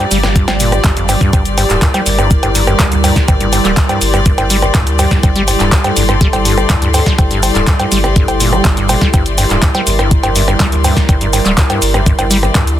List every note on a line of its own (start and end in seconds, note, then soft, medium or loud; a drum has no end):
0.00 12.80 G3 medium
0.00 1.29 F4 medium
0.00 12.80 G4 medium
0.00 1.32 D5 medium
0.00 12.80 D5 medium
0.00 0.73 A#5 medium
0.11 0.44 G1 loud
0.11 0.18 G3 loud
0.11 open hi-hat medium
0.11 shaker medium
0.23 0.27 G1 medium
0.23 cross-stick medium
0.23 snare medium
0.23 closed hi-hat soft
0.23 cowbell soft
0.23 shaker soft
0.36 0.46 G2 medium
0.36 kick loud
0.36 closed hi-hat medium
0.36 shaker soft
0.48 0.81 G1 loud
0.48 snare medium
0.48 closed hi-hat medium
0.48 cowbell medium
0.48 shaker soft
0.59 0.74 A#2 medium
0.59 12.80 C6 medium
0.59 open hi-hat loud
0.59 shaker medium
0.72 0.79 G2 medium
0.72 cross-stick medium
0.72 closed hi-hat soft
0.72 cowbell soft
0.72 shaker soft
0.84 1.17 G1 medium
0.84 0.91 G2 loud
0.84 kick loud
0.84 clap loud
0.84 closed hi-hat medium
0.84 shaker soft
0.97 1.07 F2 medium
0.97 closed hi-hat medium
0.97 shaker soft
1.09 1.16 G2 medium
1.09 open hi-hat medium
1.09 cowbell medium
1.09 shaker medium
1.21 1.31 G2 loud
1.21 kick medium
1.21 shaker soft
1.33 1.66 G1 loud
1.33 12.80 E4 medium
1.33 5.22 A#4 medium
1.33 kick loud
1.33 closed hi-hat medium
1.33 cowbell medium
1.33 shaker soft
1.45 closed hi-hat medium
1.45 shaker soft
1.58 1.64 G2 medium
1.58 open hi-hat loud
1.58 cowbell soft
1.58 shaker medium
1.70 1.80 D1 loud
1.70 1.76 G2 medium
1.70 clap soft
1.70 closed hi-hat soft
1.70 shaker soft
1.82 1.89 G2 medium
1.82 kick loud
1.82 clap loud
1.82 closed hi-hat medium
1.82 shaker soft
1.94 2.01 G3 loud
1.94 closed hi-hat medium
1.94 cowbell medium
1.94 shaker soft
2.06 2.10 G1 medium
2.06 2.39 G1 loud
2.06 open hi-hat medium
2.06 shaker medium
2.19 2.29 G2 medium
2.19 cross-stick medium
2.19 cowbell soft
2.19 shaker soft
2.31 kick loud
2.31 closed hi-hat medium
2.31 shaker soft
2.43 2.76 G1 loud
2.43 2.50 G2 medium
2.43 closed hi-hat medium
2.43 cowbell medium
2.43 shaker soft
2.55 2.62 G2 medium
2.55 open hi-hat loud
2.55 shaker medium
2.67 2.74 G2 medium
2.67 cross-stick medium
2.67 closed hi-hat soft
2.67 cowbell soft
2.67 shaker soft
2.80 3.12 D2 medium
2.80 2.86 G3 loud
2.80 kick loud
2.80 clap loud
2.80 closed hi-hat medium
2.80 shaker soft
2.92 2.96 G1 medium
2.92 closed hi-hat medium
2.92 shaker soft
3.04 3.14 G2 medium
3.04 open hi-hat loud
3.04 cowbell medium
3.04 shaker medium
3.16 kick medium
3.16 snare medium
3.16 closed hi-hat soft
3.16 shaker soft
3.28 3.61 G1 loud
3.28 3.35 G2 medium
3.28 kick loud
3.28 closed hi-hat medium
3.28 cowbell medium
3.28 shaker soft
3.41 3.47 G2 medium
3.41 closed hi-hat medium
3.41 shaker soft
3.53 3.59 G2 medium
3.53 open hi-hat loud
3.53 cowbell soft
3.53 shaker medium
3.65 3.75 D1 medium
3.65 3.72 G3 loud
3.65 clap soft
3.65 closed hi-hat soft
3.65 shaker soft
3.77 3.81 G1 medium
3.77 kick loud
3.77 clap loud
3.77 closed hi-hat medium
3.77 shaker soft
3.89 3.99 G2 medium
3.89 closed hi-hat medium
3.89 cowbell medium
3.89 shaker soft
4.01 4.34 G1 loud
4.01 open hi-hat loud
4.01 shaker medium
4.14 4.20 G2 medium
4.14 cross-stick medium
4.14 cowbell soft
4.14 shaker soft
4.26 4.33 G2 medium
4.26 kick loud
4.26 closed hi-hat medium
4.26 shaker soft
4.38 4.71 G1 loud
4.38 4.45 G2 medium
4.38 closed hi-hat medium
4.38 cowbell medium
4.38 shaker soft
4.50 4.57 G3 loud
4.50 open hi-hat loud
4.50 shaker medium
4.62 4.67 G1 medium
4.62 cross-stick medium
4.62 cowbell soft
4.62 shaker soft
4.75 5.07 D2 medium
4.75 4.85 G2 medium
4.75 kick loud
4.75 clap loud
4.75 closed hi-hat medium
4.75 shaker soft
4.87 closed hi-hat medium
4.87 shaker soft
4.99 5.06 G2 medium
4.99 open hi-hat loud
4.99 cowbell medium
4.99 shaker medium
5.11 5.18 G2 medium
5.11 kick medium
5.11 snare medium
5.11 closed hi-hat soft
5.11 shaker soft
5.23 5.56 G1 loud
5.23 5.30 G2 medium
5.23 9.12 A4 medium
5.23 kick loud
5.23 closed hi-hat medium
5.23 cowbell medium
5.23 shaker soft
5.36 5.42 G3 loud
5.36 closed hi-hat medium
5.36 shaker soft
5.48 5.52 G1 medium
5.48 open hi-hat loud
5.48 cowbell soft
5.48 shaker medium
5.60 5.70 D1 medium
5.60 5.70 G2 medium
5.60 clap soft
5.60 closed hi-hat soft
5.60 shaker soft
5.72 kick loud
5.72 clap loud
5.72 closed hi-hat medium
5.72 shaker soft
5.84 5.91 G2 medium
5.84 closed hi-hat medium
5.84 cowbell medium
5.84 shaker soft
5.97 6.29 G1 loud
5.97 6.03 G2 medium
5.97 open hi-hat loud
5.97 shaker medium
6.09 6.16 G2 medium
6.09 cross-stick medium
6.09 cowbell soft
6.09 shaker soft
6.21 6.28 G3 loud
6.21 kick loud
6.21 closed hi-hat medium
6.21 shaker soft
6.33 6.66 G1 loud
6.33 6.37 G1 medium
6.33 closed hi-hat medium
6.33 cowbell medium
6.33 shaker soft
6.45 6.55 G2 medium
6.45 open hi-hat loud
6.45 shaker medium
6.58 cross-stick medium
6.58 closed hi-hat soft
6.58 cowbell soft
6.58 shaker soft
6.70 7.03 D2 medium
6.70 6.76 G2 medium
6.70 kick loud
6.70 clap loud
6.70 closed hi-hat medium
6.70 shaker soft
6.82 6.89 G2 medium
6.82 closed hi-hat medium
6.82 shaker soft
6.94 7.01 G2 medium
6.94 open hi-hat loud
6.94 cowbell medium
6.94 shaker medium
7.06 7.13 G3 loud
7.06 kick medium
7.06 snare medium
7.06 closed hi-hat soft
7.06 shaker soft
7.19 7.23 G1 medium
7.19 7.51 G1 loud
7.19 kick loud
7.19 closed hi-hat medium
7.19 cowbell medium
7.19 shaker soft
7.31 7.41 G2 medium
7.31 closed hi-hat medium
7.31 shaker soft
7.43 open hi-hat loud
7.43 cowbell soft
7.43 shaker medium
7.55 7.65 D1 medium
7.55 7.62 G2 medium
7.55 clap soft
7.55 closed hi-hat soft
7.55 shaker soft
7.67 7.74 G2 medium
7.67 kick loud
7.67 clap loud
7.67 closed hi-hat medium
7.67 shaker soft
7.80 7.86 G2 medium
7.80 closed hi-hat soft
7.80 cowbell medium
7.80 shaker soft
7.92 8.24 G1 loud
7.92 7.98 G3 loud
7.92 open hi-hat loud
7.92 shaker medium
8.04 8.08 G1 medium
8.04 cross-stick medium
8.04 closed hi-hat soft
8.04 cowbell soft
8.04 shaker soft
8.16 8.26 G2 medium
8.16 kick loud
8.16 closed hi-hat medium
8.16 shaker soft
8.28 8.61 G1 medium
8.28 closed hi-hat soft
8.28 cowbell medium
8.28 shaker soft
8.40 8.54 A#2 medium
8.40 open hi-hat loud
8.40 shaker medium
8.53 8.66 G3 medium
8.53 cross-stick medium
8.53 cowbell soft
8.53 shaker soft
8.65 8.98 G1 loud
8.65 8.69 A#2 medium
8.65 kick loud
8.65 clap loud
8.65 closed hi-hat medium
8.65 shaker soft
8.77 8.87 G2 medium
8.77 closed hi-hat medium
8.77 shaker soft
8.89 8.96 A#2 medium
8.89 open hi-hat loud
8.89 cowbell medium
8.89 shaker medium
9.01 9.08 G3 loud
9.01 kick medium
9.01 snare medium
9.01 shaker soft
9.14 9.46 G1 loud
9.14 9.24 G2 medium
9.14 12.80 A#4 medium
9.14 kick loud
9.14 closed hi-hat medium
9.14 cowbell medium
9.14 shaker soft
9.26 closed hi-hat medium
9.26 shaker soft
9.38 9.45 G2 medium
9.38 open hi-hat loud
9.38 cowbell soft
9.38 shaker medium
9.50 9.60 D1 medium
9.50 9.57 G2 medium
9.50 clap soft
9.50 closed hi-hat soft
9.50 shaker soft
9.62 9.69 G2 medium
9.62 kick loud
9.62 clap loud
9.62 closed hi-hat medium
9.62 shaker soft
9.75 9.81 G3 loud
9.75 closed hi-hat soft
9.75 cowbell medium
9.75 shaker soft
9.87 9.91 G1 medium
9.87 10.20 G1 loud
9.87 open hi-hat medium
9.87 shaker medium
9.99 10.09 G2 medium
9.99 cross-stick medium
9.99 closed hi-hat soft
9.99 cowbell soft
9.99 shaker soft
10.11 kick loud
10.11 closed hi-hat medium
10.11 shaker soft
10.23 10.56 G1 loud
10.23 10.30 G2 medium
10.23 closed hi-hat soft
10.23 cowbell medium
10.23 shaker soft
10.36 10.42 G2 medium
10.36 open hi-hat loud
10.36 shaker medium
10.48 10.55 G2 medium
10.48 cross-stick medium
10.48 cowbell soft
10.48 shaker soft
10.60 10.93 D2 medium
10.60 10.67 G3 loud
10.60 kick loud
10.60 clap loud
10.60 closed hi-hat medium
10.60 shaker soft
10.72 10.76 G1 medium
10.72 closed hi-hat medium
10.72 shaker soft
10.84 10.95 G2 medium
10.84 open hi-hat loud
10.84 cowbell medium
10.84 shaker medium
10.97 kick medium
10.97 snare medium
10.97 closed hi-hat soft
10.97 shaker soft
11.09 11.42 G1 loud
11.09 11.16 G2 medium
11.09 kick loud
11.09 closed hi-hat medium
11.09 cowbell medium
11.09 shaker soft
11.21 11.28 G2 medium
11.21 closed hi-hat medium
11.21 shaker soft
11.33 11.40 G2 medium
11.33 open hi-hat loud
11.33 cowbell soft
11.33 shaker medium
11.45 11.55 D1 loud
11.45 11.52 G3 loud
11.45 clap soft
11.45 closed hi-hat soft
11.45 shaker soft
11.58 11.62 G1 medium
11.58 kick loud
11.58 clap loud
11.58 closed hi-hat medium
11.58 shaker soft
11.70 11.80 G2 medium
11.70 closed hi-hat medium
11.70 cowbell medium
11.70 shaker soft
11.82 12.15 G1 loud
11.82 open hi-hat medium
11.82 shaker medium
11.94 12.01 G2 medium
11.94 cross-stick medium
11.94 closed hi-hat soft
11.94 cowbell soft
11.94 shaker soft
12.06 12.13 G2 medium
12.06 kick loud
12.06 closed hi-hat medium
12.06 shaker soft
12.18 12.51 G1 loud
12.18 12.25 G2 medium
12.18 closed hi-hat medium
12.18 cowbell medium
12.18 shaker soft
12.31 12.37 G3 loud
12.31 open hi-hat loud
12.31 shaker medium
12.43 12.47 G1 medium
12.43 cross-stick medium
12.43 closed hi-hat soft
12.43 cowbell soft
12.43 shaker soft
12.55 12.80 D2 medium
12.55 12.65 G2 medium
12.55 kick loud
12.55 clap loud
12.55 closed hi-hat medium
12.55 shaker soft
12.67 closed hi-hat medium
12.67 shaker soft